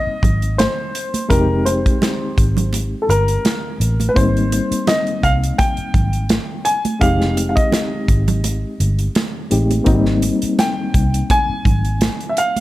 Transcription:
0.00 1.25 G3 medium
0.00 1.26 A#3 medium
0.00 1.29 C4 medium
0.00 1.27 D#4 medium
0.00 0.60 D#5 medium
0.07 muted fingered electric bass stroke soft
0.23 0.65 G#1 medium
0.23 kick medium
0.23 closed hi-hat medium
0.23 muted conga soft
0.23 low conga medium
0.42 closed hi-hat soft
0.58 1.32 C5 medium
0.58 snare loud
0.58 closed hi-hat medium
0.58 high conga medium
0.95 closed hi-hat medium
1.14 closed hi-hat soft
1.14 high conga medium
1.29 1.85 F1 medium
1.29 4.11 G#3 medium
1.29 4.12 C4 medium
1.29 4.12 D#4 medium
1.29 4.13 G4 medium
1.29 1.67 A#4 medium
1.29 kick medium
1.29 closed hi-hat medium
1.65 2.69 C5 medium
1.65 closed hi-hat medium
1.65 muted conga soft
1.86 kick medium
1.86 closed hi-hat soft
2.02 snare loud
2.02 closed hi-hat medium
2.02 high conga medium
2.38 2.93 G#1 medium
2.38 kick medium
2.38 closed hi-hat medium
2.57 closed hi-hat soft
2.57 low conga medium
2.73 closed hi-hat medium
2.73 muted conga medium
3.02 3.09 A4 soft
3.09 3.36 G1 medium
3.09 4.13 A#4 medium
3.09 closed hi-hat medium
3.09 muted conga soft
3.28 closed hi-hat soft
3.45 snare loud
3.45 closed hi-hat medium
3.45 high conga medium
3.80 4.08 A1 medium
3.80 closed hi-hat medium
4.00 closed hi-hat soft
4.00 high conga medium
4.09 4.16 B4 medium
4.14 4.59 G#1 loud
4.14 6.98 G3 medium
4.14 6.97 A#3 medium
4.14 6.97 C4 medium
4.14 6.98 D#4 medium
4.14 4.90 C5 medium
4.14 kick loud
4.14 closed hi-hat medium
4.37 closed hi-hat soft
4.52 closed hi-hat medium
4.52 muted conga soft
4.71 muted fingered electric bass stroke soft
4.71 closed hi-hat medium
4.87 5.24 D#5 medium
4.87 snare loud
4.87 closed hi-hat medium
4.87 high conga medium
5.07 closed hi-hat soft
5.23 5.51 C2 medium
5.23 5.31 F5 medium
5.23 kick medium
5.23 closed hi-hat medium
5.43 closed hi-hat soft
5.58 6.69 G5 medium
5.58 kick medium
5.58 closed hi-hat medium
5.58 muted conga medium
5.77 muted fingered electric bass stroke soft
5.77 closed hi-hat soft
5.94 6.37 G#1 medium
5.94 kick medium
5.94 closed hi-hat medium
5.94 low conga medium
6.13 closed hi-hat soft
6.29 snare loud
6.29 closed hi-hat medium
6.29 high conga medium
6.65 6.99 G#5 medium
6.65 closed hi-hat medium
6.85 closed hi-hat soft
6.85 high conga medium
6.99 7.57 F1 medium
6.99 9.46 G#3 medium
6.99 9.47 C4 medium
6.99 9.48 D#4 medium
6.99 9.48 G4 medium
6.99 7.45 F5 medium
6.99 kick loud
6.99 closed hi-hat medium
7.21 snare soft
7.21 closed hi-hat soft
7.37 closed hi-hat medium
7.37 muted conga soft
7.49 7.57 F5 medium
7.56 8.95 D#5 medium
7.56 kick medium
7.56 closed hi-hat medium
7.72 snare medium
7.72 closed hi-hat medium
7.72 high conga medium
8.08 8.63 G#1 medium
8.08 kick medium
8.08 closed hi-hat medium
8.28 closed hi-hat soft
8.28 low conga medium
8.44 closed hi-hat medium
8.44 muted conga medium
8.80 9.07 G1 medium
8.80 closed hi-hat soft
8.80 muted conga soft
8.99 closed hi-hat soft
9.15 snare loud
9.15 closed hi-hat medium
9.15 high conga medium
9.51 9.79 A1 medium
9.51 9.87 G#3 medium
9.51 9.84 C4 soft
9.51 9.86 D#4 soft
9.51 9.87 G4 medium
9.51 closed hi-hat medium
9.71 closed hi-hat soft
9.71 high conga medium
9.84 10.29 G#1 medium
9.84 12.60 A#3 medium
9.84 12.60 C4 medium
9.84 12.60 D#4 medium
9.84 9.94 F#4 medium
9.84 kick loud
9.84 closed hi-hat medium
9.94 12.60 G3 medium
10.06 snare soft
10.22 closed hi-hat medium
10.22 muted conga soft
10.42 muted fingered electric bass stroke soft
10.42 closed hi-hat soft
10.59 11.32 G5 medium
10.59 snare loud
10.59 closed hi-hat medium
10.59 high conga medium
10.94 11.22 C2 medium
10.94 kick medium
10.94 closed hi-hat medium
11.14 closed hi-hat medium
11.30 12.34 G#5 medium
11.30 kick medium
11.30 closed hi-hat medium
11.30 muted conga medium
11.49 muted fingered electric bass stroke soft
11.65 12.08 G#1 medium
11.65 kick medium
11.65 closed hi-hat medium
11.65 low conga medium
11.85 closed hi-hat soft
12.01 snare medium
12.01 closed hi-hat medium
12.01 high conga medium
12.20 closed hi-hat soft
12.29 12.36 E5 medium
12.37 12.60 F5 medium
12.37 closed hi-hat medium
12.56 closed hi-hat medium
12.56 high conga medium

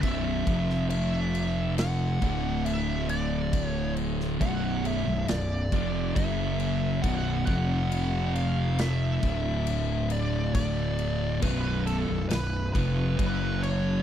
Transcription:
0.02 0.44 B0 medium
0.02 0.46 B1 loud
0.02 0.46 F#2 loud
0.02 0.47 B2 loud
0.02 0.86 E5 loud
0.02 kick loud
0.02 crash medium
0.47 2.18 F1 medium
0.47 2.21 F2 medium
0.47 2.21 C3 medium
0.47 2.21 F3 loud
0.47 kick loud
0.47 crash medium
0.70 snare soft
0.90 1.74 E5 medium
0.90 crash medium
1.35 crash medium
1.78 2.69 F#5 loud
1.78 snare loud
1.78 crash medium
2.21 4.37 D1 medium
2.21 4.39 D2 medium
2.21 4.39 A2 medium
2.21 4.40 D3 loud
2.21 kick medium
2.21 crash medium
2.65 3.09 E5 medium
2.65 crash medium
3.09 3.67 D5 medium
3.09 crash medium
3.53 kick loud
3.53 crash medium
3.67 3.93 C#5 medium
3.97 crash medium
4.20 snare soft
4.41 5.03 B0 medium
4.41 5.06 B1 medium
4.41 5.06 F#2 medium
4.41 5.06 B2 loud
4.41 4.86 F#5 loud
4.41 kick loud
4.41 crash medium
4.85 5.26 E5 loud
4.85 crash medium
5.07 5.27 B0 medium
5.07 5.28 B1 medium
5.07 5.28 F#2 medium
5.28 5.69 B0 medium
5.28 5.64 B1 medium
5.28 5.64 F#2 medium
5.28 6.15 D5 medium
5.28 snare loud
5.28 crash medium
5.72 6.13 F1 medium
5.72 6.16 F2 medium
5.72 6.17 C3 loud
5.72 6.17 F3 loud
5.72 kick loud
5.72 crash medium
6.16 7.00 F#1 medium
6.16 7.02 F#2 medium
6.16 7.03 C#3 loud
6.16 7.03 F#3 loud
6.16 7.06 E5 medium
6.16 kick loud
6.16 crash medium
6.60 crash medium
7.02 7.45 B0 loud
7.02 7.46 B1 loud
7.02 7.47 F#2 loud
7.02 7.47 B2 loud
7.02 7.45 F#5 loud
7.02 kick loud
7.02 crash medium
7.46 9.19 F1 loud
7.46 9.22 F2 medium
7.46 9.22 C3 medium
7.46 9.22 F3 loud
7.46 8.35 F#5 loud
7.46 kick loud
7.46 crash medium
7.92 crash medium
8.35 8.81 F5 loud
8.35 crash medium
8.79 10.08 E5 loud
8.79 snare loud
8.79 crash medium
9.23 11.39 D1 medium
9.23 11.41 D2 medium
9.23 11.41 A2 medium
9.23 11.42 D3 loud
9.23 kick loud
9.23 crash medium
9.67 crash medium
10.10 10.54 D5 medium
10.10 crash medium
10.55 11.39 D5 loud
10.55 kick loud
10.55 crash medium
10.99 crash medium
11.42 12.05 B0 medium
11.42 12.07 B1 medium
11.42 12.08 F#2 loud
11.42 12.08 B2 loud
11.42 11.83 B4 medium
11.42 kick loud
11.42 crash medium
11.87 12.28 A4 medium
11.87 crash medium
12.09 12.29 B0 medium
12.09 12.29 B1 medium
12.09 12.29 F#2 medium
12.29 12.72 B0 medium
12.29 12.66 B1 medium
12.29 12.66 F#2 medium
12.29 12.71 B4 medium
12.29 snare loud
12.29 crash medium
12.73 13.16 F1 medium
12.73 13.17 F2 medium
12.73 13.17 C3 loud
12.73 13.18 F3 medium
12.73 13.16 B4 medium
12.73 kick loud
12.73 crash medium
13.17 14.03 F#1 medium
13.17 14.03 F#2 loud
13.17 14.03 C#3 medium
13.17 14.03 F#3 loud
13.17 13.63 B4 medium
13.17 kick loud
13.17 crash medium
13.63 14.03 C#5 medium
13.63 crash medium

